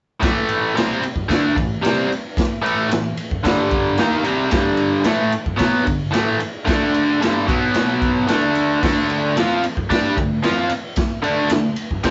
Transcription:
0.20 0.74 A2 medium
0.20 0.75 E3 medium
0.20 0.75 A3 loud
0.20 kick loud
0.20 snare loud
0.20 ride loud
0.49 ride medium
0.75 1.01 C3 medium
0.75 1.02 G3 medium
0.75 1.02 C4 medium
0.75 snare loud
0.75 ride loud
1.02 muted overdriven electric guitar stroke medium
1.02 ride medium
1.16 kick medium
1.29 1.55 D3 medium
1.29 1.55 A3 loud
1.29 1.56 D4 medium
1.29 kick medium
1.29 snare loud
1.29 ride medium
1.56 1.78 A2 medium
1.56 1.78 E3 medium
1.56 kick medium
1.56 ride medium
1.82 2.09 C3 medium
1.82 2.09 G3 medium
1.82 2.09 C4 loud
1.82 snare loud
1.82 ride loud
2.09 muted overdriven electric guitar stroke medium
2.09 ride medium
2.37 kick loud
2.37 snare loud
2.37 ride loud
2.62 2.88 A2 medium
2.62 2.89 E3 medium
2.62 2.89 A3 loud
2.62 ride medium
2.89 3.11 A2 medium
2.89 3.12 E3 medium
2.89 snare loud
2.89 ride medium
3.17 ride medium
3.31 kick medium
3.44 3.97 G2 medium
3.44 3.97 D3 medium
3.44 3.98 G3 loud
3.44 kick medium
3.44 snare loud
3.44 ride loud
3.71 kick loud
3.71 ride medium
3.97 4.24 D#3 medium
3.97 4.24 A#3 loud
3.97 4.25 D#4 loud
3.97 snare medium
3.97 ride medium
4.24 4.50 C3 loud
4.24 4.51 G3 loud
4.24 4.51 C4 loud
4.24 ride medium
4.51 5.04 G2 medium
4.51 5.04 D3 loud
4.51 5.05 G3 loud
4.51 kick loud
4.51 snare loud
4.51 ride medium
4.77 ride medium
5.04 5.31 A2 medium
5.04 5.31 E3 medium
5.04 5.31 A3 medium
5.04 snare loud
5.04 ride loud
5.31 muted overdriven electric guitar stroke medium
5.31 ride medium
5.46 kick medium
5.57 5.84 B2 medium
5.57 5.84 F#3 medium
5.57 5.84 B3 loud
5.57 kick medium
5.57 snare loud
5.57 ride loud
5.84 6.06 G2 soft
5.84 6.06 D3 medium
5.84 kick medium
5.84 ride medium
6.11 6.38 A2 medium
6.11 6.38 E3 medium
6.11 6.38 A3 loud
6.11 ride loud
6.15 snare loud
6.40 muted overdriven electric guitar stroke medium
6.40 ride medium
6.66 7.19 D3 loud
6.66 7.19 A3 medium
6.66 7.20 D4 loud
6.66 kick loud
6.66 snare loud
6.66 ride loud
6.94 ride medium
7.20 7.46 G2 medium
7.20 7.46 D3 medium
7.20 7.47 G3 loud
7.20 snare loud
7.20 ride medium
7.46 8.26 B2 medium
7.46 8.27 F#3 medium
7.46 8.27 B3 medium
7.46 kick loud
7.46 ride medium
7.74 snare loud
7.74 ride medium
8.02 kick medium
8.02 ride medium
8.27 8.80 D3 medium
8.27 8.81 A3 medium
8.27 8.81 D4 medium
8.27 snare loud
8.27 ride medium
8.55 ride medium
8.82 9.34 D3 medium
8.82 9.35 A3 medium
8.82 9.35 D4 loud
8.82 kick loud
8.82 snare loud
8.82 crash loud
9.10 ride medium
9.37 9.62 F3 medium
9.37 9.62 C4 medium
9.37 9.63 F4 loud
9.37 snare loud
9.37 ride medium
9.64 muted overdriven electric guitar stroke medium
9.64 ride medium
9.77 kick medium
9.90 10.15 G3 medium
9.90 10.16 D4 medium
9.90 10.16 G4 medium
9.90 kick loud
9.90 snare loud
9.90 ride loud
10.17 10.38 D3 medium
10.17 10.38 A3 medium
10.17 kick medium
10.17 ride medium
10.43 10.69 F3 medium
10.43 10.70 C4 medium
10.43 10.70 F4 loud
10.43 snare loud
10.43 ride medium
10.70 muted overdriven electric guitar stroke medium
10.70 ride medium
10.96 kick loud
10.96 snare loud
10.96 ride loud
11.23 11.49 D3 medium
11.23 11.49 A3 medium
11.23 11.50 D4 medium
11.23 ride medium
11.49 11.72 D3 medium
11.49 11.73 A3 medium
11.49 snare loud
11.49 ride loud
11.76 ride medium
11.91 kick medium
12.03 12.11 C3 medium
12.03 12.11 G3 medium
12.03 12.11 C4 loud
12.03 kick medium
12.03 snare loud
12.03 ride loud

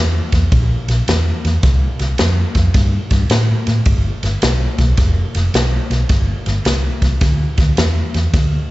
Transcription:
0.00 0.19 E2 medium
0.32 0.45 E2 medium
0.32 kick medium
0.32 snare soft
0.32 ride medium
0.52 0.75 A#1 medium
0.52 kick loud
0.52 ride medium
0.88 1.00 A#1 medium
0.88 snare soft
0.88 ride medium
1.08 1.31 E2 medium
1.08 snare loud
1.08 ride medium
1.45 1.57 E2 medium
1.45 snare soft
1.45 ride medium
1.63 1.86 C2 medium
1.63 kick loud
1.63 snare soft
1.63 ride medium
1.99 2.12 C2 medium
1.99 snare soft
1.99 ride medium
2.18 2.43 F2 medium
2.18 snare loud
2.18 ride medium
2.55 2.68 F2 medium
2.55 kick medium
2.55 snare soft
2.55 ride medium
2.74 2.98 G2 medium
2.74 kick loud
2.74 snare soft
2.74 ride medium
3.11 3.23 G2 medium
3.11 kick medium
3.11 snare soft
3.11 ride medium
3.30 3.53 A2 medium
3.30 snare loud
3.30 ride medium
3.67 3.79 A2 medium
3.67 snare soft
3.67 ride medium
3.86 4.10 G1 loud
3.86 kick loud
3.86 ride medium
4.23 4.35 G1 medium
4.23 snare soft
4.23 ride medium
4.42 4.65 B1 medium
4.42 snare loud
4.42 ride medium
4.78 4.91 B1 medium
4.78 kick medium
4.78 snare soft
4.78 ride medium
4.97 5.21 F1 medium
4.97 kick loud
4.97 snare soft
4.97 ride medium
5.35 5.47 F1 medium
5.35 snare soft
5.35 ride medium
5.54 5.77 B1 medium
5.54 snare loud
5.54 ride medium
5.90 6.03 B1 medium
5.90 snare soft
5.90 ride medium
6.09 6.33 G1 medium
6.09 kick loud
6.09 snare soft
6.09 ride medium
6.46 6.59 G1 medium
6.46 snare soft
6.46 ride medium
6.65 6.89 C2 medium
6.65 snare loud
6.65 ride medium
7.02 7.14 C2 medium
7.02 kick medium
7.02 snare soft
7.02 ride medium
7.21 7.45 D2 medium
7.21 kick loud
7.21 snare soft
7.21 ride medium
7.58 7.70 D2 medium
7.58 kick medium
7.58 snare soft
7.58 ride medium
7.77 8.01 E2 medium
7.77 snare loud
7.77 ride medium
8.14 8.27 E2 medium
8.14 snare soft
8.14 ride medium
8.34 8.57 D2 medium
8.34 kick loud
8.34 snare soft
8.34 ride medium

